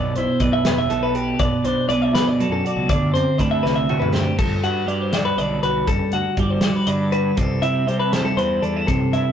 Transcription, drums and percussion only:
0.15 closed hi-hat
0.40 kick, closed hi-hat
0.65 snare, closed hi-hat
0.90 closed hi-hat
1.15 closed hi-hat
1.39 kick, closed hi-hat
1.65 closed hi-hat
1.90 closed hi-hat
2.15 snare, closed hi-hat
2.40 closed hi-hat
2.66 closed hi-hat
2.89 kick, closed hi-hat
3.15 closed hi-hat
3.39 kick, closed hi-hat
3.65 snare
3.89 mid tom
4.02 mid tom
4.15 snare
4.39 kick, crash
4.64 closed hi-hat
4.88 closed hi-hat
5.13 snare, closed hi-hat
5.39 closed hi-hat
5.63 closed hi-hat
5.87 kick, closed hi-hat
6.12 closed hi-hat
6.37 kick, closed hi-hat
6.61 snare, closed hi-hat
6.87 closed hi-hat
7.12 closed hi-hat
7.37 kick, closed hi-hat
7.63 closed hi-hat
7.88 closed hi-hat
8.13 snare, closed hi-hat
8.38 closed hi-hat
8.63 closed hi-hat
8.88 kick, closed hi-hat
9.13 closed hi-hat

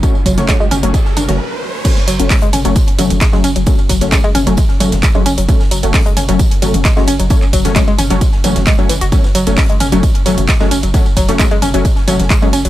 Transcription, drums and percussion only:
0.03 kick, closed hi-hat, tambourine
0.15 tambourine
0.26 kick, open hi-hat, mid tom, tambourine
0.38 snare, closed hi-hat, mid tom, tambourine
0.48 kick, snare, clap, closed hi-hat, tambourine
0.60 tambourine
0.71 open hi-hat, mid tom, tambourine
0.83 closed hi-hat, tambourine
0.94 kick, closed hi-hat, tambourine
1.06 snare, tambourine
1.16 open hi-hat, mid tom, tambourine
1.29 snare, closed hi-hat, mid tom, tambourine
1.85 kick, closed hi-hat, ride, tambourine, crash
1.97 snare, ride, tambourine
2.07 open hi-hat, ride, tambourine
2.20 closed hi-hat, ride, tambourine
2.30 kick, snare, clap, closed hi-hat, open hi-hat, ride, tambourine
2.42 closed hi-hat, ride
2.53 open hi-hat, mid tom, ride, tambourine
2.65 closed hi-hat, ride, tambourine
2.76 kick, closed hi-hat, ride, tambourine
2.88 open hi-hat, ride
2.99 open hi-hat, mid tom, ride, tambourine
3.10 closed hi-hat, mid tom, ride, tambourine
3.21 kick, snare, clap, closed hi-hat, ride, tambourine
3.33 snare, ride
3.44 open hi-hat, ride, tambourine
3.56 closed hi-hat, ride, tambourine
3.66 kick, closed hi-hat, ride, tambourine
3.79 ride, tambourine
3.89 kick, open hi-hat, ride, tambourine
4.01 snare, closed hi-hat, ride, tambourine
4.12 kick, snare, clap, closed hi-hat, ride, tambourine
4.24 ride
4.35 open hi-hat, mid tom, ride, tambourine
4.47 closed hi-hat, ride, tambourine
4.57 kick, closed hi-hat, ride, tambourine
4.69 snare, ride
4.80 open hi-hat, mid tom, ride, tambourine
4.92 snare, closed hi-hat, mid tom, ride, tambourine
5.03 kick, snare, clap, closed hi-hat, ride, tambourine
5.15 ride
5.26 open hi-hat, ride, tambourine
5.38 closed hi-hat, ride, tambourine
5.49 kick, closed hi-hat, ride, tambourine
5.61 snare, ride, tambourine
5.71 open hi-hat, ride, tambourine
5.83 closed hi-hat, ride, tambourine
5.94 kick, snare, clap, closed hi-hat, open hi-hat, ride, tambourine
6.06 closed hi-hat, ride
6.17 open hi-hat, mid tom, ride, tambourine
6.29 closed hi-hat, ride, tambourine
6.39 kick, closed hi-hat, ride, tambourine
6.51 open hi-hat, ride
6.62 open hi-hat, mid tom, ride, tambourine
6.74 closed hi-hat, mid tom, ride, tambourine
6.85 kick, snare, clap, closed hi-hat, ride, tambourine
6.97 snare, ride
7.07 open hi-hat, ride, tambourine
7.20 closed hi-hat, ride, tambourine
7.30 kick, closed hi-hat, ride, tambourine
7.42 clap, ride, tambourine
7.53 kick, open hi-hat, ride, tambourine
7.65 snare, closed hi-hat, mid tom, ride, tambourine
7.76 kick, snare, clap, closed hi-hat, ride, tambourine
7.88 ride
7.98 open hi-hat, mid tom, ride, tambourine
8.10 closed hi-hat, ride, tambourine
8.21 kick, closed hi-hat, ride, tambourine
8.33 snare, ride
8.44 open hi-hat, mid tom, ride, tambourine
8.56 snare, closed hi-hat, mid tom, ride, tambourine
8.66 kick, snare, clap, closed hi-hat, ride, tambourine
8.79 ride
8.89 open hi-hat, ride, tambourine
9.01 closed hi-hat, ride, tambourine
9.12 kick, closed hi-hat, ride, tambourine
9.24 snare, ride, tambourine
9.35 open hi-hat, ride, tambourine
9.47 closed hi-hat, ride, tambourine
9.57 kick, snare, clap, closed hi-hat, open hi-hat, ride, tambourine
9.69 closed hi-hat, ride
9.80 open hi-hat, mid tom, ride, tambourine
9.92 closed hi-hat, ride, tambourine
10.03 kick, closed hi-hat, ride, tambourine
10.15 open hi-hat, ride
10.26 open hi-hat, mid tom, ride, tambourine
10.38 closed hi-hat, mid tom, ride, tambourine
10.48 kick, snare, clap, closed hi-hat, ride, tambourine
10.60 snare, ride
10.71 open hi-hat, ride, tambourine
10.83 closed hi-hat, ride, tambourine
10.94 kick, closed hi-hat, ride, tambourine
11.06 ride, tambourine
11.16 kick, open hi-hat, ride, tambourine
11.29 snare, closed hi-hat, ride, tambourine
11.39 kick, snare, clap, closed hi-hat, ride, tambourine
11.51 ride
11.62 open hi-hat, mid tom, ride, tambourine
11.74 closed hi-hat, ride, tambourine
11.85 kick, closed hi-hat, ride, tambourine
11.97 snare, ride
12.08 open hi-hat, mid tom, ride, tambourine
12.19 snare, closed hi-hat, mid tom, ride, tambourine
12.30 kick, snare, clap, closed hi-hat, ride, tambourine
12.42 ride
12.53 open hi-hat, ride, tambourine
12.65 closed hi-hat, ride

